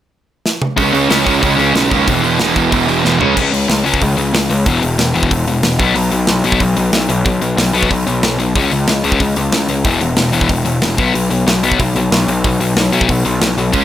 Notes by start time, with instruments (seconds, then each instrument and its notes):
0.46 snare
0.62 mid tom
0.76 picked electric bass C#2, distorted electric guitar C#3 G#3 C#4, kick, open hi-hat
0.93 picked electric bass C#2, distorted electric guitar C#3 G#3 C#4, open hi-hat
1.09 picked electric bass C#2, distorted electric guitar C#3 G#3 C#4, snare, open hi-hat
1.25 picked electric bass C#2, distorted electric guitar C#3 G#3 C#4, kick, open hi-hat
1.41 picked electric bass C#2, distorted electric guitar C#3 G#3 C#4, kick, open hi-hat
1.57 picked electric bass C#2, distorted electric guitar C#3 G#3 C#4, open hi-hat
1.73 picked electric bass B1, distorted electric guitar C#3 G#3 C#4, snare, open hi-hat
1.91 picked electric bass D#2, distorted electric guitar C#3 G#3 C#4, kick, open hi-hat
2.07 picked electric bass E1, distorted electric guitar E2 B2 E3, kick, open hi-hat
2.22 picked electric bass E1, distorted electric guitar E2 B2 E3, open hi-hat
2.38 picked electric bass E1, distorted electric guitar E2 B2 E3, snare, open hi-hat
2.55 picked electric bass E1, distorted electric guitar E2 B2 E3, kick, open hi-hat
2.71 picked electric bass E1, distorted electric guitar E2 B2 E3, kick, open hi-hat
2.87 picked electric bass E1, distorted electric guitar E2 B2 E3, open hi-hat
3.03 picked electric bass E1, distorted electric guitar E2 B2 E3, snare
3.19 picked electric bass C#2, distorted electric guitar C#3 G#3 C#4, floor tom
3.35 picked electric bass C#2, distorted electric guitar C#3 G#3 C#4, kick, crash
3.52 picked electric bass C#2, distorted electric guitar C#3 G#3, open hi-hat
3.68 picked electric bass C#2, distorted electric guitar C#3 G#3, snare, open hi-hat
3.84 picked electric bass C#2, distorted electric guitar C#3 G#3 C#4, open hi-hat
3.94 kick
4.00 picked electric bass C#2, distorted electric guitar C#3 G#3, kick, open hi-hat
4.17 picked electric bass C#2, distorted electric guitar C#3 G#3, open hi-hat
4.33 picked electric bass C#2, distorted electric guitar C#3 G#3, snare, open hi-hat
4.50 picked electric bass C#2, distorted electric guitar C#3 G#3, open hi-hat
4.66 picked electric bass E1, distorted electric guitar E2 B2 E3, kick, open hi-hat
4.82 picked electric bass E1, distorted electric guitar E2 B2, open hi-hat
4.98 picked electric bass E1, distorted electric guitar E2 B2, snare, open hi-hat
5.14 picked electric bass E1, distorted electric guitar E2 B2 E3, open hi-hat
5.23 kick
5.31 picked electric bass E1, distorted electric guitar E2 B2, kick, open hi-hat
5.47 picked electric bass E1, distorted electric guitar E2 B2, open hi-hat
5.63 picked electric bass E1, distorted electric guitar E2 B2, snare, open hi-hat
5.79 picked electric bass B1, distorted electric guitar B2 F#3 B3, kick, open hi-hat
5.95 picked electric bass B1, distorted electric guitar B2 F#3, open hi-hat
6.11 picked electric bass B1, distorted electric guitar B2 F#3, open hi-hat
6.27 picked electric bass B1, distorted electric guitar B2 F#3, snare, open hi-hat
6.44 picked electric bass B1, distorted electric guitar B2 F#3 B3, open hi-hat
6.52 kick
6.60 picked electric bass B1, distorted electric guitar B2 F#3, kick, open hi-hat
6.77 picked electric bass B1, distorted electric guitar B2 F#3, open hi-hat
6.92 picked electric bass B1, distorted electric guitar B2 F#3, snare, open hi-hat
7.09 picked electric bass B1, distorted electric guitar B2 F#3, open hi-hat
7.25 picked electric bass B1, distorted electric guitar B2 F#3, kick, open hi-hat
7.41 picked electric bass B1, distorted electric guitar B2 F#3, open hi-hat
7.57 picked electric bass B1, distorted electric guitar B2 F#3, snare, open hi-hat
7.73 picked electric bass B1, distorted electric guitar B2 F#3 B3, open hi-hat
7.83 kick
7.90 picked electric bass B1, distorted electric guitar B2 F#3, kick, open hi-hat
8.07 picked electric bass B1, distorted electric guitar B2 F#3, open hi-hat
8.23 picked electric bass B1, distorted electric guitar B2 F#3, snare, open hi-hat
8.39 picked electric bass B1, distorted electric guitar B2 F#3, open hi-hat
8.55 picked electric bass C#2, distorted electric guitar C#3 G#3 C#4, kick, open hi-hat
8.71 picked electric bass C#2, distorted electric guitar C#3 G#3, open hi-hat
8.88 picked electric bass C#2, distorted electric guitar C#3 G#3, snare, open hi-hat
9.04 picked electric bass C#2, distorted electric guitar C#3 G#3 C#4, open hi-hat
9.12 kick
9.20 picked electric bass C#2, distorted electric guitar C#3 G#3, kick, open hi-hat
9.36 picked electric bass C#2, distorted electric guitar C#3 G#3, open hi-hat
9.52 picked electric bass C#2, distorted electric guitar C#3 G#3, snare, open hi-hat
9.68 picked electric bass C#2, distorted electric guitar C#3 G#3, open hi-hat
9.84 picked electric bass E1, distorted electric guitar E2 B2 E3, kick, open hi-hat
10.01 picked electric bass E1, distorted electric guitar E2 B2, open hi-hat
10.17 picked electric bass E1, distorted electric guitar E2 B2, snare, open hi-hat
10.32 picked electric bass E1, distorted electric guitar E2 B2 E3, open hi-hat
10.41 kick
10.49 picked electric bass E1, distorted electric guitar E2 B2, kick, open hi-hat
10.65 picked electric bass E1, distorted electric guitar E2 B2, open hi-hat
10.82 picked electric bass E1, distorted electric guitar E2 B2, snare, open hi-hat
10.97 picked electric bass B1, distorted electric guitar B2 F#3 B3, kick, open hi-hat
11.14 picked electric bass B1, distorted electric guitar B2 F#3, open hi-hat
11.30 picked electric bass B1, distorted electric guitar B2 F#3, open hi-hat
11.47 picked electric bass B1, distorted electric guitar B2 F#3, snare, open hi-hat
11.63 picked electric bass B1, distorted electric guitar B2 F#3 B3, open hi-hat
11.72 kick
11.79 picked electric bass B1, distorted electric guitar B2 F#3, kick, open hi-hat
11.95 picked electric bass B1, distorted electric guitar B2 F#3, open hi-hat
12.11 picked electric bass B1, distorted electric guitar B2 F#3, snare, open hi-hat
12.27 picked electric bass B1, distorted electric guitar B2 F#3, open hi-hat
12.44 picked electric bass B1, distorted electric guitar B2 F#3, kick, open hi-hat
12.60 picked electric bass B1, distorted electric guitar B2 F#3, open hi-hat
12.76 picked electric bass B1, distorted electric guitar B2 F#3, snare, open hi-hat
12.92 picked electric bass B1, distorted electric guitar B2 F#3 B3, open hi-hat
13.01 kick
13.09 picked electric bass B1, distorted electric guitar B2 F#3, kick, open hi-hat
13.25 picked electric bass B1, distorted electric guitar B2 F#3, open hi-hat
13.41 picked electric bass B1, distorted electric guitar B2 F#3, snare, open hi-hat
13.57 picked electric bass B1, distorted electric guitar B2 F#3, open hi-hat
13.72 picked electric bass C#2, distorted electric guitar C#3 G#3 C#4, kick, open hi-hat